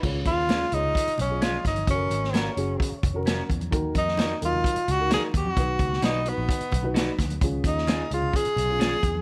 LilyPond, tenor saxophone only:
\new Staff \with { instrumentName = "Tenor saxophone" } { \time 4/4 \key des \mixolydian \tempo 4 = 130 r8 f'4 ees'4 des'8 f'8 ees'8 | des'4. r2 r8 | r8 ees'4 f'4 ges'8 aes'8 ges'8~ | ges'4 ees'8 ces'4. r4 |
r8 ees'4 f'8 aes'2 | }